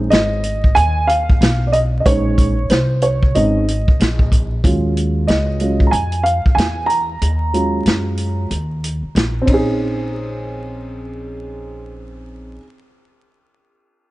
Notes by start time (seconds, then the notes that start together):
Already playing: G#3 C4 C#4 D#4
0.10 G#1 D#5, snare, closed hi-hat
0.44 closed hi-hat
0.64 kick
0.75 D#2 G#5, closed hi-hat
1.07 F5, closed hi-hat
1.30 kick
1.41 B1, snare, closed hi-hat
1.67 D5
1.72 D#5, closed hi-hat
2.00 D#5
2.06 A#1 G#3 C#4 D#4 C5 C#5, kick, closed hi-hat
2.38 kick, closed hi-hat
2.70 C2 C5, snare, closed hi-hat
3.02 C#5, closed hi-hat
3.23 kick
3.35 G#1 G#3 C4 C#4 D#4 D#5, closed hi-hat
3.68 closed hi-hat
3.88 muted upright bass stroke, kick
4.00 A#1, snare, closed hi-hat
4.19 kick
4.32 kick, closed hi-hat
4.64 D#2 F#3 G#3 C#4 F4, kick, closed hi-hat
4.97 closed hi-hat
5.27 C#2 D#5, snare, closed hi-hat
5.60 F#3 G#3 C#4 F4, closed hi-hat
5.80 kick
5.87 A#5
5.91 F2 G#5, closed hi-hat
6.12 closed hi-hat
6.23 F5, closed hi-hat
6.46 muted upright bass stroke, kick
6.55 E2 G#5, closed hi-hat
6.60 snare
6.86 A#5, closed hi-hat
7.22 D#2, closed hi-hat
7.53 F#3 G#3 C#4 F4, closed hi-hat
7.86 F#2, snare, closed hi-hat
8.17 closed hi-hat
8.51 D#2, closed hi-hat
8.84 closed hi-hat
9.03 muted upright bass stroke
9.15 A#1, snare, closed hi-hat
9.42 C4 C#4
9.47 A#1 D#4, kick, ride
9.54 G#4